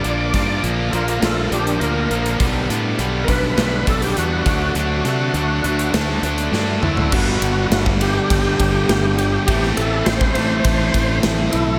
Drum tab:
CC |----------------|----------------|----------------|x---------------|
RD |----------------|----------------|----------------|--x-x-x-x-x-x-x-|
HH |x-x-x-xxx-xxx-xx|x-x-x-x-x-xxx-x-|x-x-x-xxx-xx----|----------------|
SD |--o-----o-------|--------o-------|--o-----o---o---|----o-------o---|
T2 |----------------|----------------|--------------o-|----------------|
FT |----------------|----------------|---------------o|----------------|
BD |--o-------------|o-----o---o---o-|----------------|o----o--o-o-----|

CC |----------------|
RD |x-x-x-x-x-x-x-x-|
HH |----------------|
SD |-o--o-------o---|
T2 |----------------|
FT |----------------|
BD |o----o--o-o-----|